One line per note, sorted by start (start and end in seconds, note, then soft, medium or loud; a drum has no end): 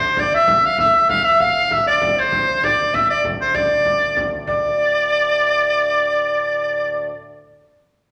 0.00 0.78 D2 medium
0.00 0.78 A2 medium
0.00 0.15 C5 medium
0.00 0.21 C5 loud
0.17 0.36 D5 medium
0.17 0.33 D5 loud
0.17 frame drum medium
0.33 0.49 E5 medium
0.33 0.67 E5 loud
0.33 frame drum soft
0.48 0.77 E5 medium
0.48 frame drum loud
0.66 0.80 F5 loud
0.78 4.47 D2 medium
0.78 4.47 A2 medium
0.78 0.93 E5 medium
0.78 1.08 E5 loud
0.78 frame drum loud
0.93 1.22 E5 medium
0.93 frame drum soft
1.09 1.27 F5 loud
1.09 frame drum loud
1.24 1.38 E5 medium
1.24 1.42 E5 loud
1.40 1.69 F5 loud
1.40 1.74 F5 loud
1.40 frame drum medium
1.56 frame drum soft
1.71 1.85 E5 medium
1.71 1.86 E5 loud
1.71 frame drum medium
1.86 2.18 D5 medium
1.86 2.21 D5 loud
1.86 frame drum soft
2.01 frame drum medium
2.16 2.46 C5 medium
2.16 2.66 C5 loud
2.32 frame drum medium
2.47 2.62 C5 medium
2.47 frame drum soft
2.63 2.95 D5 medium
2.63 2.96 D5 loud
2.63 frame drum medium
2.79 frame drum soft
2.94 3.12 E5 medium
2.94 3.09 E5 medium
2.94 frame drum medium
3.10 3.24 D5 loud
3.10 3.25 D5 medium
3.24 frame drum medium
3.40 3.56 C5 medium
3.40 frame drum soft
3.54 4.28 D5 loud
3.54 4.32 D5 medium
3.54 frame drum medium
3.85 frame drum medium
4.17 frame drum medium
4.47 7.12 D2 medium
4.47 7.12 A2 medium
4.47 7.08 D5 medium
4.47 7.08 D5 loud
4.47 frame drum medium